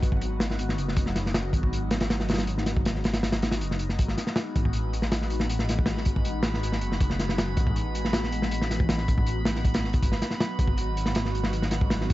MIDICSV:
0, 0, Header, 1, 5, 480
1, 0, Start_track
1, 0, Tempo, 377358
1, 1234, Time_signature, 4, 2, 24, 8
1, 15431, End_track
2, 0, Start_track
2, 0, Title_t, "Synth texture"
2, 0, Program_c, 0, 99
2, 5071, Note_on_c, 0, 83, 81
2, 15431, Note_off_c, 0, 83, 0
2, 15431, End_track
3, 0, Start_track
3, 0, Title_t, "Analog synth pad"
3, 0, Program_c, 1, 89
3, 0, Note_on_c, 1, 54, 84
3, 0, Note_on_c, 1, 59, 72
3, 0, Note_on_c, 1, 63, 76
3, 0, Note_on_c, 1, 66, 90
3, 5022, Note_off_c, 1, 54, 0
3, 5022, Note_off_c, 1, 59, 0
3, 5023, Note_off_c, 1, 66, 0
3, 5073, Note_on_c, 1, 59, 78
3, 5075, Note_on_c, 1, 66, 90
3, 5076, Note_on_c, 1, 56, 84
3, 12701, Note_off_c, 1, 63, 0
3, 12703, Note_off_c, 1, 66, 0
3, 12704, Note_off_c, 1, 56, 0
3, 12750, Note_on_c, 1, 63, 75
3, 12750, Note_on_c, 1, 66, 94
3, 12751, Note_on_c, 1, 54, 80
3, 15431, Note_off_c, 1, 54, 0
3, 15431, Note_off_c, 1, 59, 0
3, 15431, Note_off_c, 1, 63, 0
3, 15431, Note_off_c, 1, 66, 0
3, 15431, End_track
4, 0, Start_track
4, 0, Title_t, "Detuned saw bass"
4, 0, Program_c, 2, 39
4, 32, Note_on_c, 2, 32, 96
4, 734, Note_off_c, 2, 32, 0
4, 754, Note_on_c, 2, 32, 78
4, 970, Note_off_c, 2, 32, 0
4, 995, Note_on_c, 2, 30, 97
4, 1935, Note_off_c, 2, 30, 0
4, 1946, Note_on_c, 2, 32, 91
4, 3851, Note_off_c, 2, 32, 0
4, 3869, Note_on_c, 2, 32, 93
4, 4345, Note_off_c, 2, 32, 0
4, 4353, Note_on_c, 2, 32, 77
4, 4593, Note_on_c, 2, 30, 93
4, 4612, Note_off_c, 2, 32, 0
4, 5054, Note_off_c, 2, 30, 0
4, 5075, Note_on_c, 2, 32, 93
4, 5291, Note_off_c, 2, 32, 0
4, 5795, Note_on_c, 2, 33, 94
4, 7695, Note_off_c, 2, 33, 0
4, 7708, Note_on_c, 2, 33, 91
4, 8412, Note_off_c, 2, 33, 0
4, 8430, Note_on_c, 2, 32, 81
4, 8648, Note_off_c, 2, 32, 0
4, 8670, Note_on_c, 2, 30, 97
4, 9613, Note_off_c, 2, 30, 0
4, 9631, Note_on_c, 2, 33, 95
4, 11533, Note_off_c, 2, 33, 0
4, 11553, Note_on_c, 2, 33, 95
4, 12515, Note_on_c, 2, 32, 86
4, 12534, Note_off_c, 2, 33, 0
4, 12642, Note_on_c, 2, 35, 77
4, 12661, Note_off_c, 2, 32, 0
4, 12745, Note_off_c, 2, 35, 0
4, 12751, Note_on_c, 2, 32, 92
4, 12969, Note_off_c, 2, 32, 0
4, 13468, Note_on_c, 2, 32, 93
4, 15372, Note_off_c, 2, 32, 0
4, 15392, Note_on_c, 2, 32, 98
4, 15431, Note_off_c, 2, 32, 0
4, 15431, End_track
5, 0, Start_track
5, 0, Title_t, "Drums"
5, 32, Note_on_c, 9, 36, 82
5, 39, Note_on_c, 9, 42, 63
5, 153, Note_off_c, 9, 36, 0
5, 153, Note_on_c, 9, 36, 89
5, 167, Note_off_c, 9, 42, 0
5, 273, Note_on_c, 9, 42, 90
5, 280, Note_off_c, 9, 36, 0
5, 400, Note_off_c, 9, 42, 0
5, 510, Note_on_c, 9, 38, 101
5, 523, Note_on_c, 9, 42, 69
5, 638, Note_off_c, 9, 38, 0
5, 642, Note_on_c, 9, 38, 54
5, 651, Note_off_c, 9, 42, 0
5, 749, Note_on_c, 9, 42, 77
5, 770, Note_off_c, 9, 38, 0
5, 876, Note_off_c, 9, 42, 0
5, 878, Note_on_c, 9, 38, 41
5, 994, Note_on_c, 9, 42, 66
5, 1005, Note_off_c, 9, 38, 0
5, 1121, Note_off_c, 9, 42, 0
5, 1124, Note_on_c, 9, 38, 37
5, 1226, Note_on_c, 9, 42, 88
5, 1230, Note_on_c, 9, 36, 96
5, 1251, Note_off_c, 9, 38, 0
5, 1350, Note_on_c, 9, 38, 51
5, 1353, Note_off_c, 9, 42, 0
5, 1357, Note_off_c, 9, 36, 0
5, 1470, Note_off_c, 9, 38, 0
5, 1470, Note_on_c, 9, 38, 53
5, 1470, Note_on_c, 9, 42, 68
5, 1597, Note_off_c, 9, 38, 0
5, 1597, Note_off_c, 9, 42, 0
5, 1604, Note_on_c, 9, 38, 45
5, 1708, Note_on_c, 9, 42, 79
5, 1709, Note_off_c, 9, 38, 0
5, 1709, Note_on_c, 9, 38, 121
5, 1835, Note_off_c, 9, 42, 0
5, 1837, Note_off_c, 9, 38, 0
5, 1946, Note_on_c, 9, 36, 72
5, 1952, Note_on_c, 9, 42, 62
5, 2073, Note_off_c, 9, 36, 0
5, 2074, Note_on_c, 9, 36, 90
5, 2079, Note_off_c, 9, 42, 0
5, 2199, Note_on_c, 9, 42, 92
5, 2201, Note_off_c, 9, 36, 0
5, 2326, Note_off_c, 9, 42, 0
5, 2425, Note_on_c, 9, 42, 71
5, 2431, Note_on_c, 9, 38, 95
5, 2548, Note_off_c, 9, 42, 0
5, 2548, Note_on_c, 9, 42, 73
5, 2556, Note_off_c, 9, 38, 0
5, 2556, Note_on_c, 9, 38, 103
5, 2674, Note_off_c, 9, 38, 0
5, 2674, Note_on_c, 9, 38, 104
5, 2675, Note_off_c, 9, 42, 0
5, 2676, Note_on_c, 9, 42, 76
5, 2798, Note_off_c, 9, 38, 0
5, 2798, Note_on_c, 9, 38, 52
5, 2803, Note_off_c, 9, 42, 0
5, 2907, Note_on_c, 9, 42, 63
5, 2922, Note_off_c, 9, 38, 0
5, 2922, Note_on_c, 9, 38, 86
5, 2970, Note_off_c, 9, 38, 0
5, 2970, Note_on_c, 9, 38, 85
5, 2973, Note_off_c, 9, 42, 0
5, 2973, Note_on_c, 9, 42, 61
5, 3027, Note_off_c, 9, 42, 0
5, 3027, Note_on_c, 9, 42, 69
5, 3034, Note_off_c, 9, 38, 0
5, 3034, Note_on_c, 9, 38, 92
5, 3143, Note_off_c, 9, 42, 0
5, 3143, Note_on_c, 9, 42, 77
5, 3161, Note_off_c, 9, 38, 0
5, 3270, Note_off_c, 9, 42, 0
5, 3278, Note_on_c, 9, 38, 42
5, 3385, Note_on_c, 9, 42, 67
5, 3387, Note_off_c, 9, 38, 0
5, 3387, Note_on_c, 9, 38, 48
5, 3513, Note_off_c, 9, 42, 0
5, 3514, Note_off_c, 9, 38, 0
5, 3517, Note_on_c, 9, 36, 85
5, 3630, Note_on_c, 9, 42, 95
5, 3641, Note_on_c, 9, 38, 106
5, 3644, Note_off_c, 9, 36, 0
5, 3757, Note_off_c, 9, 42, 0
5, 3758, Note_off_c, 9, 38, 0
5, 3758, Note_on_c, 9, 38, 39
5, 3865, Note_on_c, 9, 42, 71
5, 3880, Note_off_c, 9, 38, 0
5, 3880, Note_on_c, 9, 38, 93
5, 3987, Note_off_c, 9, 38, 0
5, 3987, Note_off_c, 9, 42, 0
5, 3987, Note_on_c, 9, 38, 95
5, 3987, Note_on_c, 9, 42, 76
5, 4108, Note_off_c, 9, 38, 0
5, 4108, Note_on_c, 9, 38, 102
5, 4115, Note_off_c, 9, 42, 0
5, 4117, Note_on_c, 9, 42, 78
5, 4227, Note_off_c, 9, 38, 0
5, 4227, Note_on_c, 9, 38, 104
5, 4229, Note_off_c, 9, 42, 0
5, 4229, Note_on_c, 9, 42, 75
5, 4353, Note_off_c, 9, 42, 0
5, 4353, Note_on_c, 9, 42, 72
5, 4354, Note_off_c, 9, 38, 0
5, 4362, Note_on_c, 9, 38, 101
5, 4470, Note_off_c, 9, 38, 0
5, 4470, Note_on_c, 9, 38, 93
5, 4478, Note_off_c, 9, 42, 0
5, 4478, Note_on_c, 9, 42, 80
5, 4591, Note_off_c, 9, 42, 0
5, 4591, Note_on_c, 9, 42, 89
5, 4597, Note_off_c, 9, 38, 0
5, 4719, Note_off_c, 9, 42, 0
5, 4722, Note_on_c, 9, 38, 45
5, 4822, Note_on_c, 9, 42, 67
5, 4849, Note_off_c, 9, 38, 0
5, 4950, Note_off_c, 9, 42, 0
5, 4953, Note_on_c, 9, 38, 38
5, 5071, Note_on_c, 9, 42, 86
5, 5075, Note_on_c, 9, 36, 91
5, 5080, Note_off_c, 9, 38, 0
5, 5195, Note_on_c, 9, 38, 53
5, 5199, Note_off_c, 9, 42, 0
5, 5203, Note_off_c, 9, 36, 0
5, 5311, Note_off_c, 9, 38, 0
5, 5311, Note_on_c, 9, 38, 46
5, 5313, Note_on_c, 9, 42, 67
5, 5429, Note_off_c, 9, 38, 0
5, 5429, Note_on_c, 9, 38, 49
5, 5440, Note_off_c, 9, 42, 0
5, 5543, Note_off_c, 9, 38, 0
5, 5543, Note_on_c, 9, 38, 114
5, 5550, Note_on_c, 9, 42, 78
5, 5670, Note_off_c, 9, 38, 0
5, 5677, Note_off_c, 9, 42, 0
5, 5795, Note_on_c, 9, 42, 61
5, 5796, Note_on_c, 9, 36, 83
5, 5917, Note_off_c, 9, 36, 0
5, 5917, Note_on_c, 9, 36, 79
5, 5922, Note_off_c, 9, 42, 0
5, 6017, Note_on_c, 9, 42, 84
5, 6045, Note_off_c, 9, 36, 0
5, 6144, Note_off_c, 9, 42, 0
5, 6274, Note_on_c, 9, 42, 63
5, 6387, Note_on_c, 9, 38, 51
5, 6401, Note_off_c, 9, 42, 0
5, 6507, Note_on_c, 9, 42, 84
5, 6509, Note_off_c, 9, 38, 0
5, 6509, Note_on_c, 9, 38, 107
5, 6633, Note_off_c, 9, 38, 0
5, 6633, Note_on_c, 9, 38, 47
5, 6635, Note_off_c, 9, 42, 0
5, 6743, Note_on_c, 9, 42, 65
5, 6760, Note_off_c, 9, 38, 0
5, 6866, Note_on_c, 9, 38, 55
5, 6870, Note_off_c, 9, 42, 0
5, 6989, Note_on_c, 9, 42, 83
5, 6994, Note_off_c, 9, 38, 0
5, 7112, Note_on_c, 9, 38, 46
5, 7116, Note_off_c, 9, 42, 0
5, 7235, Note_on_c, 9, 42, 65
5, 7239, Note_off_c, 9, 38, 0
5, 7243, Note_on_c, 9, 38, 50
5, 7361, Note_on_c, 9, 36, 89
5, 7362, Note_off_c, 9, 42, 0
5, 7370, Note_off_c, 9, 38, 0
5, 7451, Note_on_c, 9, 38, 110
5, 7464, Note_on_c, 9, 42, 76
5, 7488, Note_off_c, 9, 36, 0
5, 7579, Note_off_c, 9, 38, 0
5, 7591, Note_off_c, 9, 42, 0
5, 7598, Note_on_c, 9, 38, 47
5, 7697, Note_on_c, 9, 42, 66
5, 7708, Note_on_c, 9, 36, 82
5, 7725, Note_off_c, 9, 38, 0
5, 7824, Note_off_c, 9, 42, 0
5, 7835, Note_off_c, 9, 36, 0
5, 7838, Note_on_c, 9, 36, 83
5, 7948, Note_on_c, 9, 42, 84
5, 7966, Note_off_c, 9, 36, 0
5, 8075, Note_off_c, 9, 42, 0
5, 8175, Note_on_c, 9, 38, 115
5, 8188, Note_on_c, 9, 42, 71
5, 8302, Note_off_c, 9, 38, 0
5, 8315, Note_off_c, 9, 42, 0
5, 8315, Note_on_c, 9, 38, 49
5, 8435, Note_on_c, 9, 42, 94
5, 8442, Note_off_c, 9, 38, 0
5, 8551, Note_on_c, 9, 38, 45
5, 8562, Note_off_c, 9, 42, 0
5, 8665, Note_on_c, 9, 42, 60
5, 8679, Note_off_c, 9, 38, 0
5, 8792, Note_off_c, 9, 42, 0
5, 8800, Note_on_c, 9, 38, 37
5, 8908, Note_on_c, 9, 42, 86
5, 8910, Note_on_c, 9, 36, 93
5, 8927, Note_off_c, 9, 38, 0
5, 9029, Note_on_c, 9, 38, 54
5, 9035, Note_off_c, 9, 42, 0
5, 9037, Note_off_c, 9, 36, 0
5, 9150, Note_off_c, 9, 38, 0
5, 9150, Note_on_c, 9, 38, 52
5, 9151, Note_on_c, 9, 42, 68
5, 9275, Note_off_c, 9, 38, 0
5, 9275, Note_on_c, 9, 38, 52
5, 9278, Note_off_c, 9, 42, 0
5, 9391, Note_on_c, 9, 42, 87
5, 9392, Note_off_c, 9, 38, 0
5, 9392, Note_on_c, 9, 38, 115
5, 9518, Note_off_c, 9, 42, 0
5, 9519, Note_off_c, 9, 38, 0
5, 9626, Note_on_c, 9, 42, 68
5, 9631, Note_on_c, 9, 36, 93
5, 9753, Note_off_c, 9, 36, 0
5, 9753, Note_off_c, 9, 42, 0
5, 9753, Note_on_c, 9, 36, 89
5, 9871, Note_on_c, 9, 42, 76
5, 9880, Note_off_c, 9, 36, 0
5, 9998, Note_off_c, 9, 42, 0
5, 10111, Note_on_c, 9, 42, 63
5, 10235, Note_on_c, 9, 38, 50
5, 10238, Note_off_c, 9, 42, 0
5, 10343, Note_off_c, 9, 38, 0
5, 10343, Note_on_c, 9, 38, 123
5, 10351, Note_on_c, 9, 42, 96
5, 10470, Note_off_c, 9, 38, 0
5, 10477, Note_on_c, 9, 38, 50
5, 10478, Note_off_c, 9, 42, 0
5, 10585, Note_on_c, 9, 42, 69
5, 10604, Note_off_c, 9, 38, 0
5, 10712, Note_off_c, 9, 42, 0
5, 10713, Note_on_c, 9, 38, 52
5, 10827, Note_on_c, 9, 42, 88
5, 10841, Note_off_c, 9, 38, 0
5, 10954, Note_off_c, 9, 42, 0
5, 10958, Note_on_c, 9, 38, 48
5, 11073, Note_off_c, 9, 38, 0
5, 11073, Note_on_c, 9, 38, 45
5, 11077, Note_on_c, 9, 42, 66
5, 11193, Note_on_c, 9, 36, 81
5, 11200, Note_off_c, 9, 38, 0
5, 11204, Note_off_c, 9, 42, 0
5, 11306, Note_on_c, 9, 38, 108
5, 11314, Note_on_c, 9, 42, 82
5, 11320, Note_off_c, 9, 36, 0
5, 11418, Note_off_c, 9, 38, 0
5, 11418, Note_on_c, 9, 38, 44
5, 11441, Note_off_c, 9, 42, 0
5, 11546, Note_off_c, 9, 38, 0
5, 11550, Note_on_c, 9, 42, 57
5, 11552, Note_on_c, 9, 36, 76
5, 11673, Note_off_c, 9, 36, 0
5, 11673, Note_on_c, 9, 36, 90
5, 11678, Note_off_c, 9, 42, 0
5, 11785, Note_on_c, 9, 42, 83
5, 11800, Note_off_c, 9, 36, 0
5, 11912, Note_off_c, 9, 42, 0
5, 12026, Note_on_c, 9, 38, 96
5, 12036, Note_on_c, 9, 42, 74
5, 12153, Note_off_c, 9, 38, 0
5, 12156, Note_on_c, 9, 38, 42
5, 12164, Note_off_c, 9, 42, 0
5, 12270, Note_on_c, 9, 36, 81
5, 12273, Note_on_c, 9, 42, 61
5, 12283, Note_off_c, 9, 38, 0
5, 12391, Note_off_c, 9, 42, 0
5, 12391, Note_on_c, 9, 42, 83
5, 12397, Note_off_c, 9, 36, 0
5, 12398, Note_on_c, 9, 38, 105
5, 12517, Note_off_c, 9, 38, 0
5, 12517, Note_on_c, 9, 38, 37
5, 12518, Note_off_c, 9, 42, 0
5, 12632, Note_on_c, 9, 42, 54
5, 12642, Note_on_c, 9, 36, 85
5, 12644, Note_off_c, 9, 38, 0
5, 12752, Note_off_c, 9, 36, 0
5, 12752, Note_on_c, 9, 36, 100
5, 12754, Note_off_c, 9, 42, 0
5, 12754, Note_on_c, 9, 42, 85
5, 12868, Note_on_c, 9, 38, 55
5, 12880, Note_off_c, 9, 36, 0
5, 12881, Note_off_c, 9, 42, 0
5, 12995, Note_off_c, 9, 38, 0
5, 12995, Note_on_c, 9, 42, 66
5, 12997, Note_on_c, 9, 38, 54
5, 13108, Note_off_c, 9, 38, 0
5, 13108, Note_on_c, 9, 38, 48
5, 13122, Note_off_c, 9, 42, 0
5, 13234, Note_off_c, 9, 38, 0
5, 13234, Note_on_c, 9, 38, 109
5, 13234, Note_on_c, 9, 42, 81
5, 13361, Note_off_c, 9, 38, 0
5, 13361, Note_off_c, 9, 42, 0
5, 13469, Note_on_c, 9, 36, 90
5, 13470, Note_on_c, 9, 42, 64
5, 13578, Note_off_c, 9, 36, 0
5, 13578, Note_on_c, 9, 36, 91
5, 13597, Note_off_c, 9, 42, 0
5, 13705, Note_off_c, 9, 36, 0
5, 13706, Note_on_c, 9, 42, 87
5, 13834, Note_off_c, 9, 42, 0
5, 13953, Note_on_c, 9, 42, 63
5, 14065, Note_on_c, 9, 38, 51
5, 14080, Note_off_c, 9, 42, 0
5, 14180, Note_on_c, 9, 42, 88
5, 14192, Note_off_c, 9, 38, 0
5, 14196, Note_on_c, 9, 38, 118
5, 14307, Note_off_c, 9, 42, 0
5, 14315, Note_off_c, 9, 38, 0
5, 14315, Note_on_c, 9, 38, 45
5, 14436, Note_on_c, 9, 42, 61
5, 14442, Note_off_c, 9, 38, 0
5, 14547, Note_on_c, 9, 38, 57
5, 14563, Note_off_c, 9, 42, 0
5, 14664, Note_on_c, 9, 42, 79
5, 14674, Note_off_c, 9, 38, 0
5, 14786, Note_on_c, 9, 38, 45
5, 14791, Note_off_c, 9, 42, 0
5, 14893, Note_on_c, 9, 42, 68
5, 14900, Note_off_c, 9, 38, 0
5, 14900, Note_on_c, 9, 38, 51
5, 15021, Note_off_c, 9, 42, 0
5, 15026, Note_on_c, 9, 36, 91
5, 15028, Note_off_c, 9, 38, 0
5, 15141, Note_on_c, 9, 38, 100
5, 15149, Note_on_c, 9, 42, 86
5, 15153, Note_off_c, 9, 36, 0
5, 15268, Note_off_c, 9, 38, 0
5, 15273, Note_on_c, 9, 38, 47
5, 15276, Note_off_c, 9, 42, 0
5, 15389, Note_on_c, 9, 42, 63
5, 15392, Note_on_c, 9, 36, 88
5, 15400, Note_off_c, 9, 38, 0
5, 15431, Note_off_c, 9, 36, 0
5, 15431, Note_off_c, 9, 42, 0
5, 15431, End_track
0, 0, End_of_file